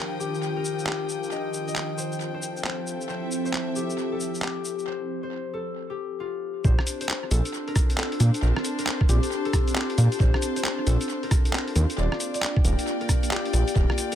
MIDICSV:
0, 0, Header, 1, 6, 480
1, 0, Start_track
1, 0, Key_signature, -2, "major"
1, 0, Tempo, 444444
1, 1417, Time_signature, 4, 2, 24, 8
1, 15282, End_track
2, 0, Start_track
2, 0, Title_t, "String section"
2, 0, Program_c, 0, 48
2, 0, Note_on_c, 0, 53, 74
2, 0, Note_on_c, 0, 79, 76
2, 0, Note_on_c, 0, 87, 71
2, 2136, Note_off_c, 0, 87, 0
2, 2596, Note_on_c, 0, 69, 63
2, 3140, Note_on_c, 0, 76, 77
2, 5257, Note_off_c, 0, 53, 0
2, 5257, Note_off_c, 0, 69, 0
2, 5257, Note_off_c, 0, 79, 0
2, 5258, Note_off_c, 0, 76, 0
2, 7175, Note_on_c, 0, 62, 85
2, 7831, Note_on_c, 0, 72, 89
2, 8409, Note_on_c, 0, 81, 72
2, 12699, Note_on_c, 0, 65, 73
2, 12983, Note_on_c, 0, 74, 89
2, 13500, Note_off_c, 0, 72, 0
2, 13535, Note_on_c, 0, 79, 86
2, 13793, Note_off_c, 0, 81, 0
2, 14076, Note_off_c, 0, 62, 0
2, 15282, Note_off_c, 0, 65, 0
2, 15282, Note_off_c, 0, 74, 0
2, 15282, Note_off_c, 0, 79, 0
2, 15282, End_track
3, 0, Start_track
3, 0, Title_t, "Harp"
3, 0, Program_c, 1, 46
3, 0, Note_on_c, 1, 67, 87
3, 0, Note_on_c, 1, 70, 86
3, 212, Note_off_c, 1, 67, 0
3, 216, Note_on_c, 1, 67, 85
3, 604, Note_off_c, 1, 70, 0
3, 608, Note_on_c, 1, 70, 85
3, 932, Note_off_c, 1, 67, 0
3, 936, Note_on_c, 1, 67, 83
3, 1415, Note_on_c, 1, 75, 95
3, 1804, Note_off_c, 1, 75, 0
3, 1808, Note_on_c, 1, 75, 84
3, 2135, Note_on_c, 1, 72, 84
3, 2525, Note_off_c, 1, 72, 0
3, 2529, Note_on_c, 1, 72, 82
3, 2853, Note_off_c, 1, 72, 0
3, 2857, Note_on_c, 1, 72, 85
3, 2899, Note_off_c, 1, 70, 0
3, 3331, Note_off_c, 1, 72, 0
3, 3335, Note_on_c, 1, 72, 98
3, 3478, Note_off_c, 1, 67, 0
3, 3726, Note_off_c, 1, 72, 0
3, 3730, Note_on_c, 1, 72, 87
3, 3734, Note_off_c, 1, 75, 0
3, 4058, Note_on_c, 1, 67, 86
3, 4449, Note_on_c, 1, 69, 87
3, 4773, Note_off_c, 1, 67, 0
3, 4777, Note_on_c, 1, 67, 87
3, 5252, Note_off_c, 1, 72, 0
3, 5257, Note_on_c, 1, 72, 92
3, 5645, Note_off_c, 1, 72, 0
3, 5649, Note_on_c, 1, 72, 87
3, 5973, Note_off_c, 1, 69, 0
3, 5977, Note_on_c, 1, 69, 87
3, 6365, Note_off_c, 1, 67, 0
3, 6370, Note_on_c, 1, 67, 87
3, 6695, Note_on_c, 1, 65, 89
3, 7171, Note_off_c, 1, 72, 0
3, 7176, Note_on_c, 1, 72, 104
3, 7564, Note_off_c, 1, 72, 0
3, 7569, Note_on_c, 1, 72, 96
3, 7891, Note_off_c, 1, 69, 0
3, 7896, Note_on_c, 1, 69, 97
3, 8291, Note_on_c, 1, 70, 95
3, 8355, Note_off_c, 1, 69, 0
3, 8616, Note_on_c, 1, 69, 97
3, 8681, Note_off_c, 1, 70, 0
3, 8912, Note_off_c, 1, 67, 0
3, 9096, Note_on_c, 1, 70, 106
3, 9161, Note_off_c, 1, 69, 0
3, 9420, Note_off_c, 1, 65, 0
3, 9484, Note_off_c, 1, 70, 0
3, 9488, Note_on_c, 1, 70, 94
3, 9706, Note_off_c, 1, 72, 0
3, 9816, Note_on_c, 1, 67, 94
3, 10208, Note_on_c, 1, 69, 95
3, 10273, Note_off_c, 1, 70, 0
3, 10531, Note_off_c, 1, 67, 0
3, 10535, Note_on_c, 1, 67, 93
3, 11015, Note_on_c, 1, 72, 101
3, 11402, Note_off_c, 1, 72, 0
3, 11406, Note_on_c, 1, 72, 93
3, 11731, Note_off_c, 1, 69, 0
3, 11735, Note_on_c, 1, 69, 96
3, 12129, Note_on_c, 1, 70, 91
3, 12194, Note_off_c, 1, 69, 0
3, 12450, Note_off_c, 1, 70, 0
3, 12455, Note_on_c, 1, 70, 97
3, 12937, Note_on_c, 1, 74, 103
3, 13078, Note_off_c, 1, 67, 0
3, 13324, Note_off_c, 1, 74, 0
3, 13329, Note_on_c, 1, 74, 94
3, 13544, Note_off_c, 1, 72, 0
3, 13652, Note_off_c, 1, 70, 0
3, 13656, Note_on_c, 1, 70, 94
3, 14045, Note_off_c, 1, 70, 0
3, 14049, Note_on_c, 1, 70, 92
3, 14377, Note_on_c, 1, 67, 95
3, 14852, Note_off_c, 1, 70, 0
3, 14856, Note_on_c, 1, 70, 101
3, 15244, Note_off_c, 1, 70, 0
3, 15249, Note_on_c, 1, 70, 96
3, 15282, Note_off_c, 1, 67, 0
3, 15282, Note_off_c, 1, 70, 0
3, 15282, Note_off_c, 1, 74, 0
3, 15282, End_track
4, 0, Start_track
4, 0, Title_t, "Ambient pad"
4, 0, Program_c, 2, 92
4, 0, Note_on_c, 2, 51, 75
4, 0, Note_on_c, 2, 62, 68
4, 0, Note_on_c, 2, 65, 71
4, 0, Note_on_c, 2, 67, 69
4, 0, Note_on_c, 2, 70, 82
4, 2093, Note_off_c, 2, 51, 0
4, 2093, Note_off_c, 2, 70, 0
4, 2094, Note_off_c, 2, 62, 0
4, 2094, Note_off_c, 2, 65, 0
4, 2137, Note_on_c, 2, 53, 80
4, 2137, Note_on_c, 2, 64, 70
4, 2138, Note_on_c, 2, 60, 68
4, 2138, Note_on_c, 2, 69, 86
4, 5213, Note_off_c, 2, 67, 0
4, 5226, Note_off_c, 2, 53, 0
4, 5226, Note_off_c, 2, 60, 0
4, 5226, Note_off_c, 2, 64, 0
4, 5226, Note_off_c, 2, 69, 0
4, 7176, Note_on_c, 2, 65, 73
4, 7176, Note_on_c, 2, 69, 87
4, 7177, Note_on_c, 2, 60, 81
4, 7177, Note_on_c, 2, 62, 74
4, 12653, Note_off_c, 2, 69, 0
4, 12654, Note_off_c, 2, 60, 0
4, 12695, Note_on_c, 2, 67, 90
4, 12696, Note_on_c, 2, 58, 80
4, 15282, Note_off_c, 2, 58, 0
4, 15282, Note_off_c, 2, 62, 0
4, 15282, Note_off_c, 2, 65, 0
4, 15282, Note_off_c, 2, 67, 0
4, 15282, End_track
5, 0, Start_track
5, 0, Title_t, "Detuned saw bass"
5, 0, Program_c, 3, 39
5, 7177, Note_on_c, 3, 34, 98
5, 7288, Note_off_c, 3, 34, 0
5, 7896, Note_on_c, 3, 34, 100
5, 8007, Note_off_c, 3, 34, 0
5, 8856, Note_on_c, 3, 46, 94
5, 8968, Note_off_c, 3, 46, 0
5, 9096, Note_on_c, 3, 34, 98
5, 9207, Note_off_c, 3, 34, 0
5, 9816, Note_on_c, 3, 34, 104
5, 9927, Note_off_c, 3, 34, 0
5, 10776, Note_on_c, 3, 46, 92
5, 10888, Note_off_c, 3, 46, 0
5, 11016, Note_on_c, 3, 34, 98
5, 11128, Note_off_c, 3, 34, 0
5, 11738, Note_on_c, 3, 34, 102
5, 11848, Note_off_c, 3, 34, 0
5, 12697, Note_on_c, 3, 39, 92
5, 12808, Note_off_c, 3, 39, 0
5, 12938, Note_on_c, 3, 27, 99
5, 13049, Note_off_c, 3, 27, 0
5, 13658, Note_on_c, 3, 27, 103
5, 13768, Note_off_c, 3, 27, 0
5, 14617, Note_on_c, 3, 34, 78
5, 14728, Note_off_c, 3, 34, 0
5, 14857, Note_on_c, 3, 27, 101
5, 14968, Note_off_c, 3, 27, 0
5, 15282, End_track
6, 0, Start_track
6, 0, Title_t, "Drums"
6, 218, Note_on_c, 9, 82, 68
6, 326, Note_off_c, 9, 82, 0
6, 370, Note_on_c, 9, 82, 40
6, 457, Note_off_c, 9, 82, 0
6, 457, Note_on_c, 9, 82, 31
6, 565, Note_off_c, 9, 82, 0
6, 697, Note_on_c, 9, 82, 71
6, 805, Note_off_c, 9, 82, 0
6, 850, Note_on_c, 9, 82, 42
6, 937, Note_off_c, 9, 82, 0
6, 937, Note_on_c, 9, 39, 111
6, 937, Note_on_c, 9, 82, 29
6, 1045, Note_off_c, 9, 39, 0
6, 1045, Note_off_c, 9, 82, 0
6, 1177, Note_on_c, 9, 82, 68
6, 1285, Note_off_c, 9, 82, 0
6, 1330, Note_on_c, 9, 82, 40
6, 1417, Note_off_c, 9, 82, 0
6, 1417, Note_on_c, 9, 82, 31
6, 1525, Note_off_c, 9, 82, 0
6, 1657, Note_on_c, 9, 82, 68
6, 1765, Note_off_c, 9, 82, 0
6, 1811, Note_on_c, 9, 82, 42
6, 1897, Note_off_c, 9, 82, 0
6, 1897, Note_on_c, 9, 39, 106
6, 1897, Note_on_c, 9, 82, 30
6, 2005, Note_off_c, 9, 39, 0
6, 2005, Note_off_c, 9, 82, 0
6, 2137, Note_on_c, 9, 82, 70
6, 2245, Note_off_c, 9, 82, 0
6, 2290, Note_on_c, 9, 82, 41
6, 2377, Note_off_c, 9, 82, 0
6, 2377, Note_on_c, 9, 82, 31
6, 2485, Note_off_c, 9, 82, 0
6, 2616, Note_on_c, 9, 82, 72
6, 2724, Note_off_c, 9, 82, 0
6, 2770, Note_on_c, 9, 82, 40
6, 2857, Note_on_c, 9, 39, 99
6, 2878, Note_off_c, 9, 82, 0
6, 2965, Note_off_c, 9, 39, 0
6, 3097, Note_on_c, 9, 82, 70
6, 3205, Note_off_c, 9, 82, 0
6, 3250, Note_on_c, 9, 82, 41
6, 3336, Note_off_c, 9, 82, 0
6, 3336, Note_on_c, 9, 82, 29
6, 3444, Note_off_c, 9, 82, 0
6, 3576, Note_on_c, 9, 82, 70
6, 3684, Note_off_c, 9, 82, 0
6, 3729, Note_on_c, 9, 82, 40
6, 3817, Note_off_c, 9, 82, 0
6, 3817, Note_on_c, 9, 39, 101
6, 3817, Note_on_c, 9, 82, 30
6, 3925, Note_off_c, 9, 39, 0
6, 3925, Note_off_c, 9, 82, 0
6, 4057, Note_on_c, 9, 82, 68
6, 4165, Note_off_c, 9, 82, 0
6, 4210, Note_on_c, 9, 82, 42
6, 4297, Note_off_c, 9, 82, 0
6, 4297, Note_on_c, 9, 82, 31
6, 4405, Note_off_c, 9, 82, 0
6, 4536, Note_on_c, 9, 82, 67
6, 4644, Note_off_c, 9, 82, 0
6, 4690, Note_on_c, 9, 82, 41
6, 4777, Note_off_c, 9, 82, 0
6, 4777, Note_on_c, 9, 39, 99
6, 4777, Note_on_c, 9, 82, 29
6, 4885, Note_off_c, 9, 39, 0
6, 4885, Note_off_c, 9, 82, 0
6, 5017, Note_on_c, 9, 82, 69
6, 5125, Note_off_c, 9, 82, 0
6, 5170, Note_on_c, 9, 82, 40
6, 5278, Note_off_c, 9, 82, 0
6, 7176, Note_on_c, 9, 36, 118
6, 7177, Note_on_c, 9, 82, 31
6, 7284, Note_off_c, 9, 36, 0
6, 7285, Note_off_c, 9, 82, 0
6, 7329, Note_on_c, 9, 37, 68
6, 7416, Note_on_c, 9, 42, 107
6, 7416, Note_on_c, 9, 82, 68
6, 7437, Note_off_c, 9, 37, 0
6, 7524, Note_off_c, 9, 42, 0
6, 7524, Note_off_c, 9, 82, 0
6, 7570, Note_on_c, 9, 42, 66
6, 7570, Note_on_c, 9, 82, 41
6, 7656, Note_off_c, 9, 82, 0
6, 7656, Note_on_c, 9, 39, 120
6, 7656, Note_on_c, 9, 82, 31
6, 7678, Note_off_c, 9, 42, 0
6, 7764, Note_off_c, 9, 39, 0
6, 7764, Note_off_c, 9, 82, 0
6, 7896, Note_on_c, 9, 42, 110
6, 7896, Note_on_c, 9, 82, 71
6, 8004, Note_off_c, 9, 42, 0
6, 8004, Note_off_c, 9, 82, 0
6, 8050, Note_on_c, 9, 42, 66
6, 8050, Note_on_c, 9, 82, 43
6, 8137, Note_off_c, 9, 82, 0
6, 8137, Note_on_c, 9, 82, 31
6, 8158, Note_off_c, 9, 42, 0
6, 8245, Note_off_c, 9, 82, 0
6, 8290, Note_on_c, 9, 42, 37
6, 8376, Note_on_c, 9, 36, 107
6, 8377, Note_off_c, 9, 42, 0
6, 8377, Note_on_c, 9, 37, 70
6, 8377, Note_on_c, 9, 42, 106
6, 8377, Note_on_c, 9, 82, 71
6, 8484, Note_off_c, 9, 36, 0
6, 8485, Note_off_c, 9, 37, 0
6, 8485, Note_off_c, 9, 42, 0
6, 8485, Note_off_c, 9, 82, 0
6, 8530, Note_on_c, 9, 42, 66
6, 8530, Note_on_c, 9, 82, 41
6, 8617, Note_off_c, 9, 82, 0
6, 8617, Note_on_c, 9, 39, 117
6, 8617, Note_on_c, 9, 82, 31
6, 8638, Note_off_c, 9, 42, 0
6, 8725, Note_off_c, 9, 39, 0
6, 8725, Note_off_c, 9, 82, 0
6, 8770, Note_on_c, 9, 42, 53
6, 8856, Note_off_c, 9, 42, 0
6, 8856, Note_on_c, 9, 42, 113
6, 8856, Note_on_c, 9, 82, 72
6, 8964, Note_off_c, 9, 42, 0
6, 8964, Note_off_c, 9, 82, 0
6, 9010, Note_on_c, 9, 42, 67
6, 9010, Note_on_c, 9, 82, 41
6, 9097, Note_off_c, 9, 82, 0
6, 9097, Note_on_c, 9, 82, 30
6, 9118, Note_off_c, 9, 42, 0
6, 9205, Note_off_c, 9, 82, 0
6, 9250, Note_on_c, 9, 37, 67
6, 9337, Note_on_c, 9, 42, 107
6, 9337, Note_on_c, 9, 82, 74
6, 9358, Note_off_c, 9, 37, 0
6, 9445, Note_off_c, 9, 42, 0
6, 9445, Note_off_c, 9, 82, 0
6, 9490, Note_on_c, 9, 42, 64
6, 9490, Note_on_c, 9, 82, 42
6, 9577, Note_off_c, 9, 82, 0
6, 9577, Note_on_c, 9, 39, 126
6, 9577, Note_on_c, 9, 82, 30
6, 9598, Note_off_c, 9, 42, 0
6, 9685, Note_off_c, 9, 39, 0
6, 9685, Note_off_c, 9, 82, 0
6, 9729, Note_on_c, 9, 36, 109
6, 9817, Note_on_c, 9, 42, 106
6, 9817, Note_on_c, 9, 82, 67
6, 9837, Note_off_c, 9, 36, 0
6, 9925, Note_off_c, 9, 42, 0
6, 9925, Note_off_c, 9, 82, 0
6, 9970, Note_on_c, 9, 42, 67
6, 9970, Note_on_c, 9, 82, 43
6, 10057, Note_off_c, 9, 82, 0
6, 10057, Note_on_c, 9, 82, 30
6, 10078, Note_off_c, 9, 42, 0
6, 10165, Note_off_c, 9, 82, 0
6, 10210, Note_on_c, 9, 42, 34
6, 10296, Note_on_c, 9, 36, 65
6, 10297, Note_off_c, 9, 42, 0
6, 10297, Note_on_c, 9, 37, 71
6, 10297, Note_on_c, 9, 42, 104
6, 10297, Note_on_c, 9, 82, 71
6, 10404, Note_off_c, 9, 36, 0
6, 10405, Note_off_c, 9, 37, 0
6, 10405, Note_off_c, 9, 42, 0
6, 10405, Note_off_c, 9, 82, 0
6, 10450, Note_on_c, 9, 42, 62
6, 10450, Note_on_c, 9, 82, 42
6, 10537, Note_off_c, 9, 82, 0
6, 10537, Note_on_c, 9, 39, 121
6, 10537, Note_on_c, 9, 82, 29
6, 10558, Note_off_c, 9, 42, 0
6, 10645, Note_off_c, 9, 39, 0
6, 10645, Note_off_c, 9, 82, 0
6, 10690, Note_on_c, 9, 42, 50
6, 10777, Note_off_c, 9, 42, 0
6, 10777, Note_on_c, 9, 42, 108
6, 10777, Note_on_c, 9, 82, 71
6, 10885, Note_off_c, 9, 42, 0
6, 10885, Note_off_c, 9, 82, 0
6, 10930, Note_on_c, 9, 42, 65
6, 10930, Note_on_c, 9, 82, 41
6, 11016, Note_off_c, 9, 82, 0
6, 11016, Note_on_c, 9, 36, 122
6, 11016, Note_on_c, 9, 82, 32
6, 11038, Note_off_c, 9, 42, 0
6, 11124, Note_off_c, 9, 36, 0
6, 11124, Note_off_c, 9, 82, 0
6, 11169, Note_on_c, 9, 37, 69
6, 11256, Note_on_c, 9, 42, 106
6, 11256, Note_on_c, 9, 82, 76
6, 11277, Note_off_c, 9, 37, 0
6, 11364, Note_off_c, 9, 42, 0
6, 11364, Note_off_c, 9, 82, 0
6, 11409, Note_on_c, 9, 42, 66
6, 11409, Note_on_c, 9, 82, 44
6, 11496, Note_off_c, 9, 82, 0
6, 11496, Note_on_c, 9, 39, 127
6, 11496, Note_on_c, 9, 82, 30
6, 11517, Note_off_c, 9, 42, 0
6, 11604, Note_off_c, 9, 39, 0
6, 11604, Note_off_c, 9, 82, 0
6, 11736, Note_on_c, 9, 42, 101
6, 11736, Note_on_c, 9, 82, 73
6, 11844, Note_off_c, 9, 42, 0
6, 11844, Note_off_c, 9, 82, 0
6, 11889, Note_on_c, 9, 42, 66
6, 11889, Note_on_c, 9, 82, 44
6, 11976, Note_off_c, 9, 82, 0
6, 11976, Note_on_c, 9, 82, 33
6, 11997, Note_off_c, 9, 42, 0
6, 12084, Note_off_c, 9, 82, 0
6, 12129, Note_on_c, 9, 42, 36
6, 12216, Note_off_c, 9, 42, 0
6, 12216, Note_on_c, 9, 36, 115
6, 12216, Note_on_c, 9, 37, 71
6, 12216, Note_on_c, 9, 42, 104
6, 12216, Note_on_c, 9, 82, 71
6, 12324, Note_off_c, 9, 36, 0
6, 12324, Note_off_c, 9, 37, 0
6, 12324, Note_off_c, 9, 42, 0
6, 12324, Note_off_c, 9, 82, 0
6, 12369, Note_on_c, 9, 42, 64
6, 12369, Note_on_c, 9, 82, 41
6, 12456, Note_off_c, 9, 82, 0
6, 12456, Note_on_c, 9, 39, 122
6, 12456, Note_on_c, 9, 82, 31
6, 12477, Note_off_c, 9, 42, 0
6, 12564, Note_off_c, 9, 39, 0
6, 12564, Note_off_c, 9, 82, 0
6, 12610, Note_on_c, 9, 42, 52
6, 12697, Note_off_c, 9, 42, 0
6, 12697, Note_on_c, 9, 42, 104
6, 12697, Note_on_c, 9, 82, 73
6, 12805, Note_off_c, 9, 42, 0
6, 12805, Note_off_c, 9, 82, 0
6, 12850, Note_on_c, 9, 42, 64
6, 12850, Note_on_c, 9, 82, 42
6, 12937, Note_off_c, 9, 82, 0
6, 12937, Note_on_c, 9, 82, 31
6, 12958, Note_off_c, 9, 42, 0
6, 13045, Note_off_c, 9, 82, 0
6, 13090, Note_on_c, 9, 37, 63
6, 13177, Note_on_c, 9, 42, 101
6, 13177, Note_on_c, 9, 82, 77
6, 13198, Note_off_c, 9, 37, 0
6, 13285, Note_off_c, 9, 42, 0
6, 13285, Note_off_c, 9, 82, 0
6, 13330, Note_on_c, 9, 42, 67
6, 13330, Note_on_c, 9, 82, 43
6, 13418, Note_off_c, 9, 82, 0
6, 13418, Note_on_c, 9, 39, 126
6, 13418, Note_on_c, 9, 82, 32
6, 13438, Note_off_c, 9, 42, 0
6, 13526, Note_off_c, 9, 39, 0
6, 13526, Note_off_c, 9, 82, 0
6, 13570, Note_on_c, 9, 36, 111
6, 13658, Note_on_c, 9, 42, 100
6, 13658, Note_on_c, 9, 82, 75
6, 13678, Note_off_c, 9, 36, 0
6, 13766, Note_off_c, 9, 42, 0
6, 13766, Note_off_c, 9, 82, 0
6, 13810, Note_on_c, 9, 42, 69
6, 13810, Note_on_c, 9, 82, 46
6, 13897, Note_off_c, 9, 82, 0
6, 13897, Note_on_c, 9, 82, 33
6, 13918, Note_off_c, 9, 42, 0
6, 14005, Note_off_c, 9, 82, 0
6, 14050, Note_on_c, 9, 42, 35
6, 14137, Note_off_c, 9, 42, 0
6, 14137, Note_on_c, 9, 36, 64
6, 14137, Note_on_c, 9, 37, 65
6, 14137, Note_on_c, 9, 42, 98
6, 14137, Note_on_c, 9, 82, 73
6, 14245, Note_off_c, 9, 36, 0
6, 14245, Note_off_c, 9, 37, 0
6, 14245, Note_off_c, 9, 42, 0
6, 14245, Note_off_c, 9, 82, 0
6, 14290, Note_on_c, 9, 42, 66
6, 14290, Note_on_c, 9, 82, 43
6, 14378, Note_off_c, 9, 82, 0
6, 14378, Note_on_c, 9, 39, 120
6, 14378, Note_on_c, 9, 82, 31
6, 14398, Note_off_c, 9, 42, 0
6, 14486, Note_off_c, 9, 39, 0
6, 14486, Note_off_c, 9, 82, 0
6, 14531, Note_on_c, 9, 42, 51
6, 14617, Note_off_c, 9, 42, 0
6, 14617, Note_on_c, 9, 42, 105
6, 14617, Note_on_c, 9, 82, 74
6, 14725, Note_off_c, 9, 42, 0
6, 14725, Note_off_c, 9, 82, 0
6, 14771, Note_on_c, 9, 42, 66
6, 14771, Note_on_c, 9, 82, 42
6, 14856, Note_on_c, 9, 36, 116
6, 14857, Note_off_c, 9, 82, 0
6, 14857, Note_on_c, 9, 82, 34
6, 14879, Note_off_c, 9, 42, 0
6, 14964, Note_off_c, 9, 36, 0
6, 14965, Note_off_c, 9, 82, 0
6, 15010, Note_on_c, 9, 37, 64
6, 15096, Note_on_c, 9, 42, 102
6, 15096, Note_on_c, 9, 82, 78
6, 15118, Note_off_c, 9, 37, 0
6, 15204, Note_off_c, 9, 42, 0
6, 15204, Note_off_c, 9, 82, 0
6, 15249, Note_on_c, 9, 42, 69
6, 15249, Note_on_c, 9, 82, 46
6, 15282, Note_off_c, 9, 42, 0
6, 15282, Note_off_c, 9, 82, 0
6, 15282, End_track
0, 0, End_of_file